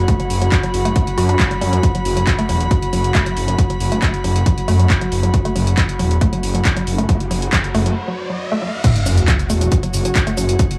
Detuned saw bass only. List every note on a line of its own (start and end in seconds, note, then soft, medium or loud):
0.30 0.48 F#1 medium
0.74 0.92 F#1 loud
1.18 1.36 F#2 loud
1.61 1.79 F#2 medium
2.05 2.23 F#1 medium
2.49 2.67 E1 medium
2.93 3.11 F#1 loud
3.37 3.55 F#1 medium
3.80 3.98 F#1 medium
4.24 4.42 F#1 loud
4.68 4.86 F#2 medium
5.12 5.30 F#1 medium
5.56 5.74 F#1 loud
5.99 6.17 E1 medium
6.43 6.61 F#1 loud
6.87 7.05 F#1 medium
7.31 7.49 F#1 medium
7.75 7.93 F#1 loud
9.06 9.24 F#1 loud
9.50 9.68 E1 medium
9.94 10.12 F#1 loud
10.37 10.55 F#1 medium